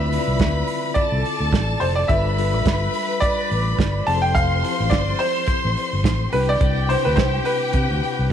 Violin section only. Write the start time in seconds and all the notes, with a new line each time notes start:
Already playing: B4 B5
0.96 A4 A5
2.09 B4 B5
4.08 C5 C6
6.33 G4 G5